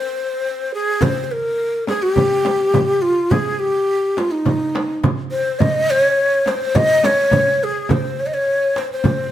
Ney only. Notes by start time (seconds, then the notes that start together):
Already playing: C5
0.74 G#4
1.02 C5
1.24 C5
1.32 A#4
1.88 G#4
2.02 G4
3.02 F4
3.31 G#4
3.59 G4
4.18 F4
4.31 D#4
5.32 C5
5.60 D#5
5.90 C#5
6.48 C5
6.76 D#5
7.05 C#5
7.63 G#4
7.91 C5
8.20 C#5
8.26 D#5
8.34 C#5
8.78 C5
8.92 C5